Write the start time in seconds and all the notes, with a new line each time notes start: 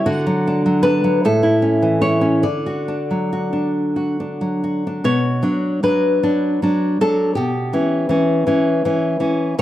0.06 D3 F#4
0.27 F#3
0.47 D4
0.66 F#3
0.83 D4 B4
1.04 F#3
1.25 A2 A4
1.43 E4
1.62 C#4
1.82 E3
2.01 E4 C#5
2.21 C#4
2.43 D3 D5
2.66 F#4
2.88 D4
3.11 F#3
3.33 F#4
3.53 D4
3.96 F#4
4.20 D4
4.41 F#3
4.64 F#4
4.87 D4
5.04 B2 C#5
5.43 F#3 D4
5.83 F#3 D4 B4
6.23 F#3 D4
6.62 F#3 D4
7.01 F#3 D4 A4
7.35 B2 G4
7.73 E3 C#4
8.09 E3 C#4
8.47 E3 C#4
8.85 E3 C#4
9.20 E3 C#4
9.59 A#2 C#5